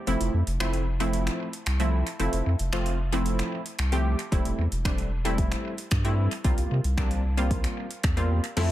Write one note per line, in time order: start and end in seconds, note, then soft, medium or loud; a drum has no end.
0.07 0.17 F1 medium
0.07 0.40 F3 medium
0.07 0.40 A3 medium
0.07 0.40 C4 medium
0.07 0.40 E4 medium
0.07 closed hi-hat medium
0.21 0.30 F1 medium
0.21 closed hi-hat medium
0.34 0.43 F2 medium
0.47 1.30 F1 medium
0.47 closed hi-hat soft
0.60 0.85 F3 medium
0.60 0.85 A3 medium
0.60 0.85 C4 medium
0.60 0.85 E4 medium
0.60 finger snap loud
0.60 closed hi-hat medium
0.73 closed hi-hat soft
1.00 1.49 F3 medium
1.00 1.49 A3 medium
1.00 1.49 C4 medium
1.00 1.49 E4 loud
1.00 closed hi-hat medium
1.13 closed hi-hat medium
1.27 finger snap medium
1.27 closed hi-hat soft
1.53 closed hi-hat medium
1.66 2.03 C2 medium
1.66 finger snap loud
1.66 closed hi-hat medium
1.80 2.04 F3 medium
1.80 2.04 A3 medium
1.80 2.04 C4 medium
1.80 2.04 E4 medium
1.80 closed hi-hat medium
2.07 closed hi-hat soft
2.19 2.29 F1 medium
2.19 2.52 F3 medium
2.19 2.52 A3 medium
2.19 2.52 C4 medium
2.19 2.52 E4 medium
2.19 closed hi-hat medium
2.33 2.42 F1 medium
2.33 closed hi-hat medium
2.46 2.55 F2 medium
2.59 3.42 F1 medium
2.59 closed hi-hat soft
2.73 2.97 F3 medium
2.73 2.97 A3 medium
2.73 2.97 C4 medium
2.73 2.97 F4 medium
2.73 finger snap loud
2.73 closed hi-hat medium
2.86 closed hi-hat medium
3.12 3.61 F3 medium
3.12 3.61 A3 medium
3.12 3.61 C4 medium
3.12 3.62 E4 loud
3.12 closed hi-hat medium
3.26 closed hi-hat medium
3.39 finger snap medium
3.39 closed hi-hat soft
3.66 closed hi-hat medium
3.79 4.16 C2 medium
3.79 finger snap loud
3.79 closed hi-hat medium
3.92 4.17 F3 medium
3.92 4.17 A3 medium
3.92 4.17 C4 medium
3.92 4.17 G4 medium
3.92 closed hi-hat medium
4.19 closed hi-hat soft
4.32 4.41 E1 loud
4.32 4.64 G3 medium
4.32 4.65 A3 medium
4.32 4.65 C4 medium
4.32 4.65 E4 medium
4.32 kick loud
4.32 closed hi-hat medium
4.45 4.54 E1 medium
4.45 closed hi-hat medium
4.58 4.68 E2 medium
4.72 5.54 E1 medium
4.72 closed hi-hat soft
4.85 5.09 G3 medium
4.85 5.10 A3 medium
4.85 5.10 C4 medium
4.85 5.10 D4 medium
4.85 finger snap loud
4.85 kick loud
4.85 closed hi-hat medium
4.98 closed hi-hat medium
5.25 5.74 G3 medium
5.25 5.74 A3 medium
5.25 5.74 C4 medium
5.25 5.74 E4 loud
5.25 closed hi-hat medium
5.38 kick loud
5.38 closed hi-hat medium
5.52 finger snap medium
5.52 closed hi-hat soft
5.78 closed hi-hat medium
5.91 6.28 G2 loud
5.91 finger snap loud
5.91 kick loud
5.91 closed hi-hat medium
6.04 6.29 G3 medium
6.04 6.29 A3 medium
6.04 6.29 C4 medium
6.04 6.29 E4 loud
6.04 closed hi-hat medium
6.31 closed hi-hat soft
6.44 6.54 C2 loud
6.44 6.77 G3 medium
6.44 6.77 A#3 medium
6.44 6.77 C4 medium
6.44 6.77 F4 medium
6.44 kick loud
6.44 closed hi-hat medium
6.58 6.67 C2 medium
6.58 closed hi-hat medium
6.71 6.80 C3 medium
6.84 7.67 C2 medium
6.84 closed hi-hat soft
6.97 7.22 G3 medium
6.97 7.22 A#3 medium
6.97 7.22 C4 medium
6.97 7.22 D4 medium
6.97 finger snap loud
6.97 kick loud
6.97 closed hi-hat medium
7.11 closed hi-hat soft
7.37 7.86 G3 medium
7.37 7.86 A#3 medium
7.37 7.86 C4 medium
7.37 7.86 F4 loud
7.37 closed hi-hat medium
7.51 kick loud
7.51 closed hi-hat medium
7.64 finger snap medium
7.64 closed hi-hat soft
7.91 closed hi-hat medium
8.03 8.41 E2 medium
8.03 finger snap loud
8.03 kick loud
8.03 closed hi-hat medium
8.17 8.41 G3 medium
8.17 8.41 A#3 medium
8.17 8.41 C4 medium
8.17 8.42 F4 loud
8.17 closed hi-hat medium
8.44 closed hi-hat soft
8.57 8.72 F2 loud
8.57 8.72 F3 medium
8.57 8.72 A3 medium
8.57 8.72 C4 medium
8.57 8.72 E4 medium
8.57 8.72 A4 medium
8.57 8.72 C5 medium
8.57 8.72 E5 medium
8.57 8.72 A5 medium
8.57 snare soft
8.57 closed hi-hat medium
8.57 crash medium
8.57 riser medium